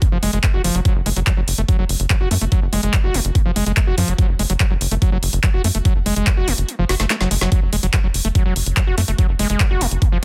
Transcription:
0.02 kick, closed hi-hat
0.12 analog synth bass F#1, acid bass F3
0.23 analog synth bass F#1, acid bass G#3, open hi-hat
0.33 analog synth bass F#1, acid bass G#3, closed hi-hat
0.43 acid bass A3, kick, clap, closed hi-hat
0.54 analog synth bass F#1, acid bass F#4
0.64 analog synth bass F#1, acid bass F3, open hi-hat
0.75 analog synth bass F#1, acid bass F#3, closed hi-hat
0.85 acid bass F#3, kick, closed hi-hat
0.96 analog synth bass F#1
1.06 analog synth bass F#1, acid bass G#3, open hi-hat
1.16 analog synth bass F#1, acid bass F#3, closed hi-hat
1.27 acid bass F#3, kick, clap, closed hi-hat
1.37 analog synth bass F#1, acid bass F#3
1.48 analog synth bass F#1, open hi-hat
1.58 analog synth bass F#1, acid bass A3, closed hi-hat
1.69 acid bass F#3, kick, closed hi-hat
1.79 analog synth bass F#1, acid bass F#3
1.89 analog synth bass F#1, open hi-hat
2.00 analog synth bass F#1, closed hi-hat
2.10 acid bass F#3, kick, clap, closed hi-hat
2.21 analog synth bass F#1, acid bass F#4
2.31 analog synth bass F#2, acid bass A3, open hi-hat
2.41 analog synth bass F#1, acid bass A3, closed hi-hat
2.52 acid bass F#3, kick, closed hi-hat
2.62 analog synth bass F#1
2.73 analog synth bass F#1, acid bass G#3, open hi-hat
2.83 analog synth bass F#1, acid bass G#3, closed hi-hat
2.94 acid bass F#3, kick, clap, closed hi-hat
3.04 analog synth bass F#1, acid bass F#4
3.14 analog synth bass F#1, acid bass G#3, open hi-hat
3.25 analog synth bass F#1, closed hi-hat
3.35 kick, closed hi-hat
3.46 analog synth bass F#1, acid bass F3
3.56 analog synth bass F#1, acid bass G#3, open hi-hat
3.66 analog synth bass F#1, acid bass G#3, closed hi-hat
3.77 acid bass A3, kick, clap, closed hi-hat
3.87 analog synth bass F#1, acid bass F#4
3.98 analog synth bass F#2, acid bass F3, open hi-hat
4.08 analog synth bass F#1, acid bass F#3, closed hi-hat
4.18 acid bass F#3, kick, closed hi-hat
4.29 analog synth bass F#1
4.39 analog synth bass F#1, acid bass G#3, open hi-hat
4.50 analog synth bass F#1, acid bass F#3, closed hi-hat
4.60 acid bass F#3, kick, clap, closed hi-hat
4.71 analog synth bass F#1, acid bass F#3
4.81 analog synth bass F#1, open hi-hat
4.91 analog synth bass F#1, acid bass A3, closed hi-hat
5.02 acid bass F#3, kick, closed hi-hat
5.12 analog synth bass F#1, acid bass F#3
5.23 analog synth bass F#1, open hi-hat
5.33 analog synth bass F#1, closed hi-hat
5.43 acid bass F#3, kick, clap, closed hi-hat
5.54 analog synth bass F#1, acid bass F#4
5.64 analog synth bass F#2, acid bass A3, open hi-hat
5.75 analog synth bass F#1, acid bass A3, closed hi-hat
5.85 acid bass F#3, kick, closed hi-hat
5.96 analog synth bass F#1
6.06 analog synth bass F#1, acid bass G#3, open hi-hat
6.16 analog synth bass F#1, acid bass G#3, closed hi-hat
6.27 acid bass F#3, kick, clap, closed hi-hat
6.37 analog synth bass F#1, acid bass F#4
6.48 analog synth bass F#1, acid bass G#3, open hi-hat
6.58 analog synth bass F#1, closed hi-hat
6.69 closed hi-hat
6.79 analog synth bass F#1, acid bass F3
6.89 analog synth bass F#1, acid bass F#4, snare, open hi-hat
7.00 analog synth bass F#1, acid bass A3, snare, closed hi-hat
7.10 acid bass A3, snare, clap, closed hi-hat
7.21 analog synth bass F#1, acid bass F#3, snare
7.31 analog synth bass F#1, acid bass G#3, open hi-hat
7.41 analog synth bass F#1, acid bass F#3, snare, closed hi-hat
7.52 acid bass F#3, kick, closed hi-hat
7.62 analog synth bass F#1
7.73 analog synth bass F#1, acid bass G#3, open hi-hat
7.83 analog synth bass F#1, acid bass F#3, closed hi-hat
7.93 acid bass F#3, kick, clap, closed hi-hat
8.04 analog synth bass F#1, acid bass F#3
8.14 analog synth bass F#1, open hi-hat
8.25 analog synth bass F#1, acid bass A3, closed hi-hat
8.35 acid bass F#3, kick, closed hi-hat
8.46 analog synth bass F#1, acid bass F#3
8.56 analog synth bass F#1, open hi-hat
8.66 analog synth bass F#1, closed hi-hat
8.77 acid bass F#3, kick, clap, closed hi-hat
8.87 analog synth bass F#1, acid bass F#4
8.98 analog synth bass F#2, acid bass A3, open hi-hat
9.08 analog synth bass F#1, acid bass A3, closed hi-hat
9.19 acid bass F#3, kick, closed hi-hat
9.29 analog synth bass F#1
9.39 analog synth bass F#1, acid bass G#3, open hi-hat
9.50 analog synth bass F#1, acid bass G#3, closed hi-hat
9.60 acid bass F#3, kick, clap, closed hi-hat
9.71 analog synth bass F#1, acid bass F#4
9.81 analog synth bass F#1, acid bass G#3, open hi-hat
9.91 analog synth bass F#1, closed hi-hat
10.02 kick, closed hi-hat
10.12 analog synth bass F#1, acid bass F3

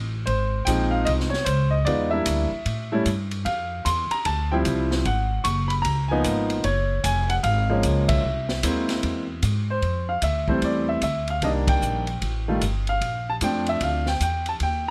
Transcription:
Already playing: upright bass A1
0.26 upright bass G#1, grand piano C5, kick, ride
0.65 upright bass A#1, grand piano F3 G#3 C4 D#4 G5, kick, hi-hat pedal, ride
0.91 grand piano F5
1.05 upright bass C2, grand piano D#5, kick, ride
1.20 snare
1.30 grand piano C#5, snare
1.45 upright bass C#2, grand piano C5, kick, hi-hat pedal, ride
1.71 grand piano D#5
1.85 upright bass E2, grand piano G#3 B3 D#4 F4 D5, kick, ride
2.11 grand piano G3 A#3 D4 E4 E5
2.26 upright bass D2, kick, hi-hat pedal, ride
2.51 muted upright bass stroke
2.65 upright bass A2, kick, ride
2.92 grand piano G3 A3 C#4 E4
3.06 upright bass G2, kick, hi-hat pedal, ride
3.31 ride
3.45 upright bass F2, grand piano F5, kick, ride
3.85 upright bass E2, grand piano C6, kick, hi-hat pedal, ride
4.11 grand piano A#5, muted upright bass stroke, ride
4.25 upright bass D2, grand piano A5, kick, ride
4.51 grand piano F3 G3 C4 E4 G5
4.65 upright bass C2, kick, hi-hat pedal, ride
4.91 snare
5.05 upright bass G#1, grand piano F#5, kick, ride
5.44 upright bass F#1, grand piano C#6, kick, hi-hat pedal, ride
5.68 grand piano B5, ride
5.82 upright bass C#2, grand piano A#5, kick, ride
6.08 grand piano F3 A#3 B3 D#4 G#5
6.24 upright bass G#1, kick, hi-hat pedal, ride
6.50 ride
6.64 upright bass F#1, grand piano C#5, kick, ride
7.04 upright bass F1, grand piano G#5, kick, hi-hat pedal, ride
7.30 grand piano F#5, ride
7.43 upright bass G#1, grand piano F5, kick, ride
7.69 grand piano F3 G#3 A#3 C#4
7.83 upright bass C#2, kick, hi-hat pedal, ride
8.08 grand piano E5, kick, ride
8.23 upright bass C2
8.49 snare
8.63 upright bass D#2, grand piano G#3 A#3 C4 E4, kick, hi-hat pedal, ride
8.89 snare, ride
9.03 upright bass E2, kick, ride
9.43 upright bass G#2, kick, hi-hat pedal, ride
9.70 grand piano C5
9.82 upright bass F2, kick, ride
10.09 grand piano F5
10.22 upright bass D2, grand piano E5, kick, hi-hat pedal, ride
10.48 grand piano E3 G3 A3 C4 C5, kick
10.62 upright bass E2, grand piano D5, kick, ride
10.89 grand piano E5
11.02 upright bass D2, grand piano E5, kick, hi-hat pedal, ride
11.28 grand piano F5, ride
11.42 upright bass C2, grand piano D#3 G3 A#3 D4 D#5, kick, ride
11.68 grand piano G5, kick, ride
11.81 upright bass A#1, hi-hat pedal
12.07 ride
12.22 upright bass A1, kick, ride
12.48 grand piano D#3 G3 A3 F4
12.61 upright bass G1, kick, hi-hat pedal, ride
12.87 grand piano F5, ride
13.01 upright bass A#1, kick, ride
13.30 grand piano A5
13.41 upright bass F2, grand piano F3 A3 C4 D4 G5, kick, hi-hat pedal, ride
13.66 grand piano E5, ride
13.81 upright bass D2, grand piano F5, kick, ride
14.06 grand piano G5, snare
14.20 upright bass E2, grand piano G5, kick, hi-hat pedal, ride
14.46 grand piano A5, ride
14.60 upright bass D#2, grand piano G5, kick, ride

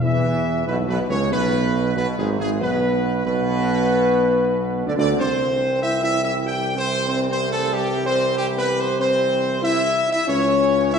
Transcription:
0.00 tuba E2, timpani E2, trombone section E3, french horn section E4, trumpet section E5
0.66 tuba B1, trombone section B2, french horn section B3, trumpet section B4
0.88 tuba B1, trombone section B2, french horn section B3, trumpet section B4
1.09 tuba C#2, trombone section C#3, french horn section C#4, trumpet section C#5
1.31 tuba B1, trombone section B2, french horn section B3, trumpet section B4
1.95 tuba B1, trombone section B2, french horn section B3, trumpet section B4
2.18 tuba G#1, trombone section G#2, french horn section G#3, trumpet section G#4
2.39 tuba G#1, trombone section G#2, french horn section G#3, trumpet section G#4
2.61 tuba B1, trombone section B2, french horn section B3, trumpet section B4
3.26 tuba B1, trombone section B2, french horn section B3, trumpet section B4
4.86 tuba D2, trombone section D3, french horn section D4, trumpet section D5
4.97 tuba D2, trombone section D3, french horn section D4, trumpet section D5
5.18 tuba C2, trombone section E3 G3, french horn section C4, trumpet section C5
5.81 french horn section E4, trumpet section E5
6.02 french horn section E4, trumpet section E5
6.24 french horn section E4, trumpet section E5
6.45 french horn section G4, trumpet section G5
6.75 french horn section C4, trumpet section C5
7.08 french horn section C4, trumpet section C5
7.30 french horn section C4, trumpet section C5
7.50 french horn section A3, trumpet section A4
7.72 french horn section G3, trumpet section G4
8.05 french horn section C4, trumpet section C5
8.36 french horn section G3, trumpet section G4
8.57 french horn section B3, trumpet section B4
8.79 french horn section C4, trumpet section C5
9.00 french horn section C4, trumpet section C5
9.62 french horn section E4, trumpet section E5
10.10 french horn section E4, trumpet section E5
10.27 tuba C#2, trombone section C#3 E3, french horn section C#4, trumpet section C#5
10.92 french horn section E4, trumpet section E5

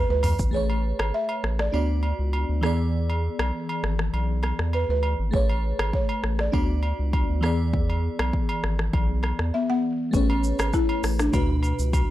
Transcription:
Already playing: fm electric piano E3 B3 G#4 D5, marimba G#4
0.09 analog synth bass D2, marimba B4
0.23 mid tom, open hi-hat, high agogo, shaker
0.39 analog synth bass G#1, kick, shaker
0.51 analog synth bass A1, fm electric piano A3 G#4 B4, marimba C#5
0.56 fm electric piano C#5
0.70 high agogo
0.99 analog synth bass G#1, cross-stick, high agogo
1.14 marimba E5
1.29 high agogo
1.44 analog synth bass A1, cross-stick
1.59 marimba D5, cross-stick
1.72 analog synth bass D2, fm electric piano B3 D4 F#4 D5, high agogo
2.03 high agogo
2.19 analog synth bass C#2
2.33 high agogo
2.49 analog synth bass D2
2.61 analog synth bass E2, fm electric piano E3 B3 G#4, cross-stick, high agogo
2.66 fm electric piano D5
3.10 high agogo
3.39 analog synth bass B1, cross-stick, high agogo
3.69 high agogo
3.83 analog synth bass G#1, cross-stick
3.99 cross-stick
4.13 analog synth bass B1, high agogo
4.43 cross-stick, high agogo
4.59 analog synth bass E2, cross-stick
4.73 marimba B4, high agogo
4.89 analog synth bass D2, marimba B4
5.03 high agogo
5.19 analog synth bass G#1
5.31 analog synth bass A1, fm electric piano A3 G#4 B4, kick
5.35 marimba C#5, fm electric piano C#5
5.49 high agogo
5.79 analog synth bass G#1, cross-stick, high agogo
5.93 marimba C#5, kick
6.09 high agogo
6.24 analog synth bass A1, cross-stick
6.39 marimba D5, cross-stick
6.52 analog synth bass D2, fm electric piano B3 D4 F#4 D5, kick, high agogo
6.83 high agogo
6.99 analog synth bass C#2
7.13 kick, high agogo
7.29 analog synth bass D2
7.41 analog synth bass E2, fm electric piano E3 B3 G#4, cross-stick, high agogo
7.46 fm electric piano D5
7.73 kick
7.90 high agogo
8.19 analog synth bass B1, cross-stick, high agogo
8.33 kick
8.49 high agogo
8.63 analog synth bass G#1, cross-stick
8.79 cross-stick
8.93 analog synth bass B1, kick, high agogo
9.23 cross-stick, high agogo
9.39 analog synth bass E2, cross-stick
9.54 marimba B3 E5
9.70 marimba B3 F#5
10.11 analog synth bass A1, fm electric piano A3 G#4 B4, marimba C#4, kick, shaker
10.16 fm electric piano C#5
10.30 high agogo
10.44 shaker
10.59 analog synth bass G#1, cross-stick, high agogo, shaker
10.73 marimba E4, kick, low woodblock, shaker
10.89 high agogo
11.03 analog synth bass A1, cross-stick, open hi-hat, shaker
11.19 marimba D4, cross-stick, shaker
11.32 analog synth bass D2, fm electric piano B2 D4 F#4 B4, kick, high agogo, shaker
11.63 high agogo, shaker
11.79 analog synth bass C#2, shaker
11.93 kick, high agogo, shaker

